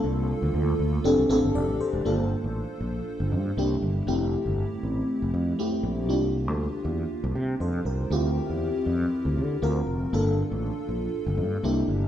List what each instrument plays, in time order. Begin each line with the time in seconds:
Already playing: fm electric piano A#3 D4 F4 A4
0.04 fretless electric bass C2
0.42 fretless electric bass D2
0.54 fretless electric bass D2
0.79 fretless electric bass D2
1.04 fretless electric bass F1, fm electric piano C4 D4 G4 A4
1.18 fretless electric bass C2
1.29 fretless electric bass A1, fm electric piano C4 D4 G4 A4
1.43 fretless electric bass G1
1.55 fretless electric bass F1, fm electric piano D5
1.68 fretless electric bass A1
1.81 fm electric piano A4 C5
1.93 fretless electric bass E1
2.05 fretless electric bass G1, fm electric piano A#3 D4 F4 A4
2.44 fretless electric bass A1
2.81 fretless electric bass A#1
3.20 fretless electric bass G1
3.32 fretless electric bass G2
3.57 fretless electric bass C2, fm electric piano A#3 D4 E4 G4
3.82 fretless electric bass G1
4.07 fretless electric bass F1, fm electric piano A3 C4 E4 G4
4.46 fretless electric bass G1
4.83 fretless electric bass A1
5.22 fretless electric bass F1
5.34 fretless electric bass F2
5.59 fm electric piano A3 C4 E4 G4
5.83 fretless electric bass A#1
6.09 fretless electric bass C2, fm electric piano A#3 D4 F4 G4
6.48 fretless electric bass D2
6.85 fretless electric bass E2
7.24 fretless electric bass C2
7.35 fretless electric bass C3
7.60 fretless electric bass F2, fm electric piano A4 C5
7.85 fretless electric bass C2, fm electric piano G4 A#4
8.10 fretless electric bass D2, fm electric piano C4 E4 F4 G4
8.49 fretless electric bass E2
8.86 fretless electric bass F2
9.25 fretless electric bass D2
9.37 fretless electric bass D3
9.62 fretless electric bass D2, fm electric piano C4 F4 F#4 A#4
9.87 fretless electric bass F1
10.13 fretless electric bass G1, fm electric piano A#3 D4 F4 A4
10.52 fretless electric bass A1
10.89 fretless electric bass A#1
11.26 fretless electric bass G1
11.38 fretless electric bass G2
11.63 fretless electric bass C2, fm electric piano A#3 D4 E4 G4
11.88 fretless electric bass G1